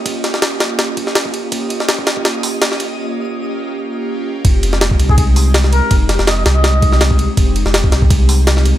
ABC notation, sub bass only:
X:1
M:4/4
L:1/16
Q:"Swing 16ths" 1/4=164
K:Fm
V:1 name="Sub bass" clef=bass
E,,,3 E,,,3 B,,,8- B,,, z | E,,,3 E,,,3 B,,,8- B,,, z | z16 | F,,,6 C,,8- C,, z |
F,,,3 F,,,3 C,,8- C,, z | F,,,3 F,,,3 C,,8- C,, z |]